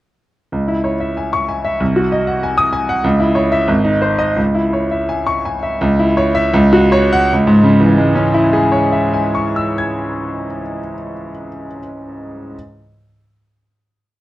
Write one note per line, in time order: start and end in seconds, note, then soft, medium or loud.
0.53 1.77 C#2 medium
0.68 0.94 E4 medium
0.84 1.10 C#5 soft
1.00 1.26 E5 medium
1.17 1.43 G#5 medium
1.33 1.58 C#6 medium
1.49 1.74 G#5 medium
1.65 1.80 E5 medium
1.80 3.00 C2 medium
1.96 2.21 F#4 medium
2.12 2.36 D#5 medium
2.27 2.51 F#5 medium
2.43 2.67 G#5 medium
2.57 2.82 D#6 loud
2.73 2.97 G#5 medium
2.89 3.04 F#5 medium
3.04 3.67 C#2 medium
3.20 3.46 E4 medium
3.35 3.62 C#5 medium
3.52 3.69 E5 medium
3.68 4.36 G#1 medium
3.85 4.13 D#4 medium
4.02 4.30 C5 medium
4.19 4.37 D#5 medium
4.36 5.77 C#2 medium
4.54 4.84 E4 medium
4.73 5.02 C#5 soft
4.91 5.20 E5 medium
5.09 5.38 G#5 medium
5.26 5.56 C#6 medium
5.45 5.74 G#5 medium
5.63 5.81 E5 medium
5.81 6.51 C#2 medium
5.99 6.28 E4 medium
6.17 6.46 C#5 medium
6.35 6.53 E5 loud
6.54 7.29 C#2 loud
6.73 7.04 F#4 medium
6.92 7.24 C#5 loud
7.12 7.32 F#5 loud
7.32 10.46 C#2 medium
7.47 10.61 G#2 medium
7.64 10.77 C#3 medium
7.81 10.94 E3 medium
7.98 11.12 G#3 medium
8.15 11.29 C#4 medium
8.34 11.48 E4 medium
8.53 11.67 G#4 medium
8.72 11.78 C#5 medium
8.92 11.79 E5 medium
9.13 11.79 G#5 medium
9.35 11.79 C#6 medium
9.56 11.79 E6 medium
9.78 11.78 G#6 medium